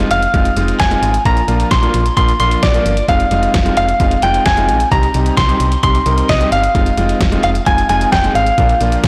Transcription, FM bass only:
0.11 0.27 F1 medium
0.34 0.50 F1 medium
0.57 0.73 F1 medium
0.80 0.96 F1 loud
1.02 1.18 G#1 medium
1.25 1.41 A#1 loud
1.48 1.64 A#1 loud
1.71 1.87 A#1 loud
1.94 2.10 A#1 medium
2.17 2.33 A#1 loud
2.40 2.56 A#1 medium
2.63 2.79 A#1 loud
2.86 3.02 G1 medium
3.09 3.25 F1 loud
3.31 3.47 F1 loud
3.54 3.70 F1 loud
3.77 3.93 F1 medium
4.00 4.16 F1 loud
4.23 4.39 F1 loud
4.46 4.70 F1 loud
4.69 4.85 A#1 medium
4.92 5.08 C2 loud
5.15 5.31 C2 loud
5.37 5.53 C2 loud
5.60 5.76 C2 medium
5.83 5.99 C2 loud
6.06 6.22 C2 medium
6.29 6.45 C2 loud
6.52 6.68 G1 medium
6.75 6.91 F1 loud
6.98 7.14 F1 medium
7.21 7.37 F1 loud
7.44 7.60 F1 medium
7.67 7.83 F1 loud
7.89 8.05 F1 medium
8.13 8.28 F1 loud
8.35 8.51 G#1 loud
8.58 8.74 A#1 loud
8.81 8.97 A#1 medium
9.04 9.08 A#1 loud

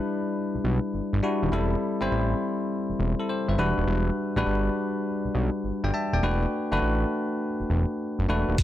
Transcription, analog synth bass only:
0.55 0.59 B1 medium
0.64 0.80 B1 medium
0.94 1.02 G1 medium
1.13 1.21 G1 loud
1.43 1.50 D#1 medium
1.53 1.76 E1 loud
2.01 2.09 G1 medium
2.12 2.35 A1 medium
2.90 2.94 E1 medium
2.99 3.15 E1 medium
3.48 3.56 G1 medium
3.58 3.74 E1 loud
3.78 3.86 D#1 medium
3.87 4.11 E1 loud
4.36 4.44 A1 medium
4.46 4.70 G1 medium
5.25 5.29 B1 soft
5.35 5.50 B1 medium
5.64 5.72 G1 medium
5.84 5.92 G1 medium
6.13 6.21 D#1 medium
6.23 6.46 E1 loud
6.72 6.80 F#1 medium
6.82 7.05 A1 medium
7.60 7.64 E1 soft
7.70 7.86 E1 medium
8.19 8.27 F#1 loud
8.29 8.44 E1 medium
8.49 8.56 D#1 medium
8.58 8.63 E1 loud

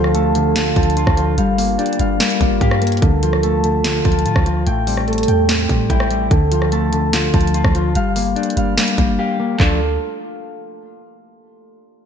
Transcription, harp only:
0.00 0.35 A3 medium
0.00 2.53 C4 medium
0.00 0.55 F4 medium
0.00 0.70 A4 medium
0.00 0.88 G5 loud
0.15 0.76 A5 medium
0.35 1.64 A3 medium
0.56 1.17 F4 loud
0.76 1.64 A5 loud
1.17 3.22 F4 medium
1.38 1.99 F5 loud
1.58 2.20 A#3 medium
1.79 4.14 G4 medium
1.99 2.61 F5 medium
2.20 2.81 A#3 loud
2.61 4.28 F5 loud
2.82 3.08 A#3 medium
3.02 3.64 A3 medium
3.23 3.84 F4 medium
3.43 4.04 A5 medium
3.64 6.31 A3 medium
3.84 4.46 F4 loud
4.05 5.50 A5 medium
4.46 6.51 F4 medium
4.67 5.28 G5 loud
4.87 5.48 C4 medium
5.08 7.27 A4 medium
5.28 5.89 G5 medium
5.49 6.10 C4 loud
5.90 7.45 G5 loud
6.11 9.11 C4 medium
6.31 6.92 A3 medium
6.52 7.13 F4 medium
6.72 7.33 A5 medium
6.93 8.22 A3 medium
7.13 7.74 F4 loud
7.34 8.22 A5 medium
7.75 9.62 F4 medium
7.95 8.56 F5 loud
8.16 8.76 A#3 medium
8.36 9.60 G4 medium
8.57 9.18 F5 medium
8.78 9.38 A#3 loud
9.19 9.60 F5 loud
9.39 9.60 A#3 medium
9.57 9.79 A3 medium
9.57 9.79 D4 medium
9.62 9.79 F4 medium

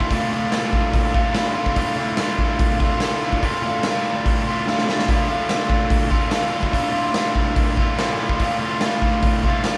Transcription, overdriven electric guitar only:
0.00 0.11 D3 medium
0.00 0.11 A3 medium
0.00 0.13 F4 medium
0.09 1.34 D2 medium
0.09 0.50 A2 loud
0.09 0.34 D3 loud
0.09 0.32 A3 loud
0.13 0.30 F4 medium
0.31 0.52 D3 medium
0.31 0.53 A3 medium
0.31 0.54 F4 medium
0.51 1.33 A2 medium
0.51 1.16 D3 medium
0.51 1.15 A3 medium
0.51 1.13 F4 medium
1.14 1.35 D3 medium
1.14 1.36 A3 medium
1.14 1.37 F4 medium
1.34 1.74 D2 medium
1.34 1.75 A2 medium
1.34 1.57 D3 loud
1.34 1.55 A3 loud
1.34 1.53 F4 medium
1.54 1.77 A3 medium
1.54 1.78 F4 medium
1.58 1.77 D3 medium
1.75 2.99 D2 medium
1.75 2.18 A2 loud
1.75 1.99 D3 medium
1.75 1.98 A3 loud
1.75 1.97 F4 loud
1.97 2.20 D3 medium
1.97 2.21 A3 medium
1.97 2.22 F4 medium
2.19 3.00 A2 medium
2.19 2.83 D3 medium
2.19 2.82 A3 medium
2.19 2.80 F4 medium
2.81 3.02 D3 medium
2.81 3.03 A3 medium
2.81 3.03 F4 medium
3.00 3.41 D2 medium
3.00 3.41 A2 medium
3.00 3.25 D3 loud
3.00 3.24 A3 medium
3.00 3.21 F4 medium
3.21 3.44 A3 medium
3.21 3.45 F4 medium
3.26 3.44 D3 medium
3.41 4.65 D2 loud
3.41 3.83 A2 medium
3.41 3.66 D3 loud
3.41 3.64 A3 loud
3.41 3.62 F4 loud
3.63 3.84 D3 medium
3.63 3.86 A3 medium
3.63 3.87 F4 medium
3.84 4.66 A2 medium
3.84 4.49 D3 medium
3.84 4.48 A3 medium
3.84 4.47 F4 medium
4.47 4.68 D3 soft
4.47 4.68 A3 medium
4.47 4.69 F4 medium
4.66 5.07 D2 medium
4.66 5.08 A2 medium
4.66 4.91 D3 medium
4.66 4.89 A3 loud
4.66 4.87 F4 medium
4.88 5.09 D3 medium
4.88 5.10 A3 medium
4.88 5.11 F4 medium
5.08 6.29 D2 medium
5.08 5.47 A2 loud
5.08 5.31 D3 loud
5.08 5.30 A3 loud
5.08 5.28 F4 medium
5.28 5.48 D3 medium
5.28 5.49 A3 medium
5.28 5.50 F4 medium
5.49 6.28 A2 medium
5.49 6.13 D3 medium
5.49 6.11 A3 medium
5.49 6.10 F4 medium
6.10 6.31 D3 soft
6.10 6.30 A3 medium
6.10 6.32 F4 medium
6.29 6.71 D2 medium
6.29 6.72 A2 medium
6.29 6.53 D3 medium
6.29 6.52 A3 medium
6.29 6.50 F4 loud
6.51 6.74 D3 medium
6.51 6.73 A3 medium
6.51 6.75 F4 medium
6.72 7.96 D2 medium
6.72 7.11 A2 medium
6.72 6.95 D3 loud
6.72 6.93 A3 loud
6.72 6.92 F4 loud
6.92 7.13 D3 medium
6.92 7.14 A3 medium
6.92 7.16 F4 medium
7.13 7.97 A2 medium
7.13 7.80 D3 medium
7.13 7.78 A3 medium
7.13 7.76 F4 medium
7.76 7.99 A3 medium
7.76 8.00 F4 medium
7.80 7.98 D3 medium
7.97 8.39 D2 medium
7.97 8.39 A2 loud
7.97 8.22 D3 loud
7.97 8.20 A3 loud
7.97 8.18 F4 medium
8.18 8.41 D3 medium
8.18 8.41 A3 medium
8.18 8.42 F4 medium
8.39 9.63 D2 medium
8.39 8.81 A2 medium
8.39 8.63 D3 loud
8.39 8.61 A3 loud
8.39 8.60 F4 loud
8.60 8.83 D3 medium
8.60 8.84 A3 medium
8.60 8.85 F4 medium
8.82 9.63 A2 medium
8.82 9.46 D3 medium
8.82 9.46 A3 medium
8.82 9.43 F4 medium
9.43 9.65 D3 medium
9.43 9.66 A3 medium
9.43 9.67 F4 medium
9.64 9.78 D2 medium
9.64 9.78 A2 medium
9.64 9.78 D3 medium
9.64 9.78 A3 loud
9.68 9.78 F4 loud

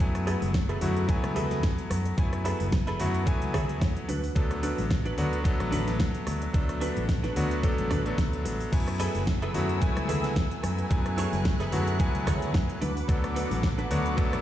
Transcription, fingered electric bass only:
0.00 0.34 F#2 medium
0.42 0.75 F#1 medium
0.82 1.16 F#2 medium
1.24 1.63 C#2 medium
1.63 1.73 F#2 medium
1.91 2.10 F#2 medium
2.18 2.52 F#2 medium
2.61 2.93 F#1 medium
3.00 3.34 F#2 medium
3.42 3.82 C#2 medium
3.82 3.92 F#2 medium
4.09 4.28 D2 medium
4.36 4.70 D2 medium
4.79 5.11 A1 medium
5.18 5.52 D2 medium
5.60 6.00 A1 medium
6.00 6.10 D2 medium
6.27 6.46 D2 medium
6.54 6.89 D2 medium
6.97 7.30 A1 loud
7.37 7.71 D2 medium
7.79 8.12 A1 medium
8.18 8.46 D2 medium
8.46 8.64 A1 medium
8.73 9.07 F#2 medium
9.15 9.48 F#1 medium
9.55 9.89 F#2 medium
9.97 10.38 C#2 medium
10.36 10.46 F#2 medium
10.64 10.83 F#2 medium
10.91 11.25 F#2 medium
11.33 11.66 F#1 loud
11.73 12.07 F#2 medium
12.15 12.54 C#2 medium
12.54 12.64 F#2 medium
12.82 13.01 D2 medium
13.09 13.43 D2 medium
13.51 13.84 A1 medium
13.91 14.25 D2 medium
14.33 14.41 A1 medium

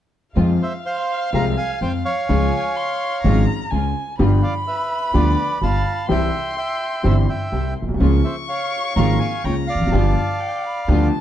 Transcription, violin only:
0.36 2.25 F5 medium
2.28 2.78 G#5 medium
2.76 3.22 C6 medium
3.23 3.72 A#5 medium
3.71 4.18 G#5 medium
4.19 6.05 B5 loud
6.08 7.72 C6 medium
8.00 9.46 C#6 medium
9.45 9.94 A#5 medium
9.92 10.42 A5 medium
10.40 10.66 G5 medium
10.64 10.89 B5 medium
10.88 11.21 A5 medium

